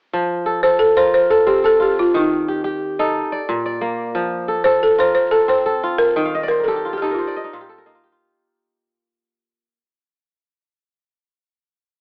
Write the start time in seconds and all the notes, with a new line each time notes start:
0.13 F3
0.46 A4
0.63 A4 C5
0.79 A4
0.96 F4 A#4 C5
1.14 C5
1.30 A4
1.47 C4 G4
1.64 A4
1.80 F4 G4
1.99 F4
2.15 D#3 D#4
2.49 G4
2.64 G4
2.99 D#4 A4
3.32 D5
3.49 A#2
3.66 D5
3.81 A#3
4.15 F3
4.48 A4
4.64 A4 C5
4.83 A4
4.98 F4 A#4 C5
5.15 C5
5.31 A4
5.48 C4 C5
5.66 A4
5.83 F4
5.98 A#4
6.16 D#3 G5
6.25 F5
6.35 D#5
6.43 D5
6.48 A#4 C5
6.60 A#4
6.64 G4 A4
6.76 G4
6.85 F4
6.93 G4
6.98 G4
7.02 D#4 A4
7.11 F4 A#4
7.19 C5
7.28 D5
7.37 D#5
7.44 D#4
7.53 A#2 F4
7.61 G4
7.69 A4
7.78 A#4
7.86 A#3 D#4
7.95 F4
8.04 G4
8.12 F4